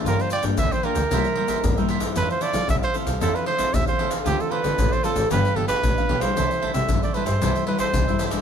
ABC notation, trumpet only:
X:1
M:4/4
L:1/16
Q:1/4=114
K:C
V:1 name="Trumpet"
_B c d2 e c B8 z2 | B c d2 e c2 z A B c2 e c2 z | G A B3 c A2 B2 A B4 c- | c3 e2 d B c3 B c4 z |]